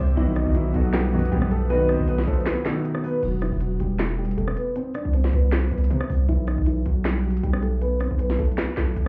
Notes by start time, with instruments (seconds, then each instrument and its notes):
Already playing: felt piano C3 E3 G3 D4 E4, grand piano C4 C5, ambient pad C5 E5 D6
0.00 808-style bass C2, soft synth lead C5
0.15 808-style bass B1, felt piano B2 D#3 F#3 D#4, grand piano E3 E4, ambient pad B4 F#5 D#6, soft synth lead D#5, closed hi-hat
0.19 felt piano F#4
0.36 grand piano D#3 D#4, cross-stick, closed hi-hat
0.45 808-style bass B1, felt piano B2 D#3 F#3 D#4
0.49 felt piano F#4
0.55 grand piano E3 E4, closed hi-hat
0.72 808-style bass B1, felt piano B2 D#3 F#3 D#4, grand piano F#4, soft synth lead F#5, closed hi-hat
0.76 grand piano F#3, felt piano A4
0.93 grand piano G3 G4, snare, clap, closed hi-hat
1.13 string section F#2 B2 D#3, grand piano F#3 F#4, closed hi-hat
1.19 closed hi-hat
1.25 closed hi-hat
1.32 808-style bass B1, string section F#2 B2 D#3, grand piano G3 G4, closed hi-hat
1.42 cross-stick
1.51 grand piano A3 A4, closed hi-hat
1.69 felt piano B2 D#3 F#3 D#4, grand piano B3 B4, soft synth lead D#5, closed hi-hat
1.73 felt piano F#4
1.89 grand piano C4 C5, cross-stick, closed hi-hat
1.99 808-style bass B1
2.08 grand piano B3 B4, closed hi-hat
2.18 snare
2.27 808-style bass B1, grand piano A3 A4, soft synth lead C5, closed hi-hat
2.34 closed hi-hat
2.40 closed hi-hat
2.46 grand piano B3 B4, snare, clap, closed hi-hat
2.63 felt piano B2 D#3 F#3 D#4, grand piano A3 A4, snare, clap, closed hi-hat
2.68 felt piano F#4
2.85 closed hi-hat
2.95 cross-stick
3.04 grand piano B3 B4, soft synth lead B4, open hi-hat
3.23 808-style bass E1, grand piano F#3 F#4, closed hi-hat, crash
3.42 grand piano E3 E4, cross-stick, closed hi-hat
3.52 808-style bass E1
3.61 grand piano F#3 F#4, closed hi-hat
3.80 808-style bass E1, grand piano G3 G4, closed hi-hat
3.99 grand piano A3 A4, snare, clap, closed hi-hat
4.18 grand piano G3 G4, closed hi-hat
4.25 closed hi-hat
4.31 closed hi-hat
4.37 808-style bass E1, grand piano A3 A4, closed hi-hat
4.48 cross-stick
4.57 grand piano B3 B4, closed hi-hat
4.76 grand piano C4 C5, closed hi-hat
4.94 grand piano D4 D5, cross-stick, closed hi-hat
5.05 808-style bass C2
5.13 grand piano C4 C5, closed hi-hat
5.24 snare
5.33 808-style bass C2, grand piano B3 B4, closed hi-hat
5.52 grand piano C4, snare, clap, closed hi-hat
5.71 808-style bass C2, grand piano B3 B4, closed hi-hat
5.78 closed hi-hat
5.84 closed hi-hat
5.90 808-style bass C3, grand piano C4 C5, closed hi-hat
6.01 cross-stick
6.10 808-style bass C2, open hi-hat
6.29 808-style bass B1, grand piano E3 E4, closed hi-hat
6.47 grand piano D#3 D#4, cross-stick, closed hi-hat
6.58 808-style bass B1
6.66 grand piano E3 E4, closed hi-hat
6.86 808-style bass B1, grand piano F#3 F#4, closed hi-hat
7.05 grand piano G3 G4, snare, clap, closed hi-hat
7.24 grand piano F#3 F#4, closed hi-hat
7.31 closed hi-hat
7.37 closed hi-hat
7.43 808-style bass B1, grand piano G3 G4, closed hi-hat
7.53 cross-stick
7.63 grand piano A3 A4, closed hi-hat
7.82 grand piano B3 B4, closed hi-hat
8.00 grand piano C4, cross-stick, closed hi-hat
8.11 808-style bass B1
8.19 grand piano B3 B4, closed hi-hat
8.30 snare
8.39 808-style bass B1, grand piano A3 A4, closed hi-hat
8.45 closed hi-hat
8.52 closed hi-hat
8.58 grand piano B3 B4, snare, clap, closed hi-hat
8.77 808-style bass B1, grand piano A3 A4, snare, clap, closed hi-hat
8.96 808-style bass B1, closed hi-hat